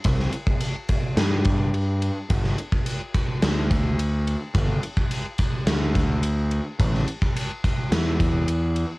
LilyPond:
<<
  \new Staff \with { instrumentName = "Picked electric bass" } { \clef bass \time 4/4 \key g \dorian \tempo 4 = 107 c,8 r4. g,2 | g,,8 r4. d,2 | g,,8 r4. d,2 | a,,8 r4. e,2 | }
  \new DrumStaff \with { instrumentName = "Drums" } \drummode { \time 4/4 <bd cymr>16 sn16 cymr16 bd16 cymr8 <bd cymr>8 <cymr sn>8 <bd cymr>8 cymr8 cymr8 | <bd cymr>16 sn16 cymr16 bd16 cymr8 <bd cymr>8 <cymr sn>8 <bd cymr>8 cymr8 cymr8 | <bd cymr>8 cymr16 bd16 cymr8 <bd cymr>8 <cymr sn>8 <bd cymr>8 cymr8 cymr8 | <bd cymr>16 sn16 cymr16 bd16 cymr8 <bd cymr>8 <cymr sn>8 <bd cymr>8 cymr8 cymr8 | }
>>